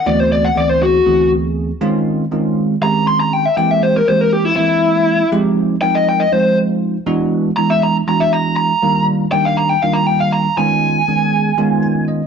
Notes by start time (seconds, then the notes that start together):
0.06 D2 E3 A3 B3 C4 F#4 D5
0.20 C5
0.32 D5
0.44 F#5
0.55 D2 E3 A3 B3 C4 G#4 D5
0.69 C5
0.83 F#4
1.06 D2 E3 A3 B3 C4 G#4
1.81 D#3 G#3 C4 C#4 F4
2.31 D#3 G#3 C4 C#4 F4
2.81 D#3 G#3 C4 C#4 G4 A#5
3.08 C6
3.20 A#5
3.33 G5
3.46 E5
3.57 E3 G#3 A#3 C4 G4 G5
3.71 E5
3.83 C5
3.97 A#4
4.08 E3 G#3 A#3 C4 G4 C5
4.21 A#4
4.33 G4
4.45 E4
4.56 E3 G#3 A#3 C4 E4
5.32 F3 G#3 C4 D#4 G4
5.82 F3 G#3 C4 D#4 A#4 G5
5.95 D#5
6.09 G5
6.20 D#5
6.32 F3 G#3 C4 D#4 F4 C5
7.06 E3 G#3 B3 D4 F#4
7.57 E3 G#3 B3 D4 E4 A#5
7.70 E5
7.83 A#5
8.07 E3 G#3 B3 D4 F#4 A#5
8.20 E5
8.33 A#5
8.56 A#5
8.82 D#3 G3 A#3 D4 F4
9.32 D#3 G3 A#3 D4 G4 G5
9.45 F5
9.57 A#5
9.69 G5
9.82 D#3 G3 A#3 D4 F4 F5
9.93 A#5
10.07 G5
10.20 F5
10.32 A#5
10.57 D#3 G#3 B3 C#4 F4 G#5
11.08 D#3 G#3 B3 C#4 G#4
11.57 D#3 G#3 B3 C#4 F4
11.83 G#5
12.08 D#5